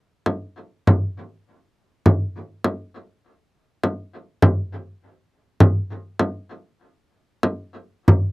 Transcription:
0.26 frame drum
0.87 frame drum
2.06 frame drum
2.64 frame drum
3.84 frame drum
4.42 frame drum
5.60 frame drum
6.19 frame drum
7.43 frame drum
8.08 frame drum

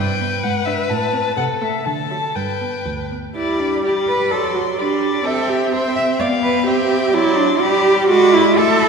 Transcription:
Already playing: G2 B4 G5
0.21 B3
0.43 G#2 F#5
0.66 D4 E5
0.90 A2 A5
1.13 C4
1.37 C3 A4 F#5
1.62 A3 E5
1.85 D3 A4 A5
2.11 F#3
2.35 G2 B4 G5
2.61 B3
2.85 D2
3.12 B3
3.35 G3 E4 D5 B5
3.59 D4
3.84 G4 D5 B5
4.07 B4
4.31 F#3 A4 D5 C6
4.55 F#4
4.78 G3 D4 D5 B5
5.24 C4 A4 E5 G5
5.49 G4
5.72 C5 E5 G5
5.96 E5
6.20 B3 D5 F5 G5
6.43 B4
6.66 C4 G4 E5 G5
7.14 F#3 E4 D5 C6
7.38 D4
7.60 G3 G4 D5 B5
8.09 G#3 F#4 D5 B5
8.34 E4
8.57 A3 A4 E5 C6
8.82 B5

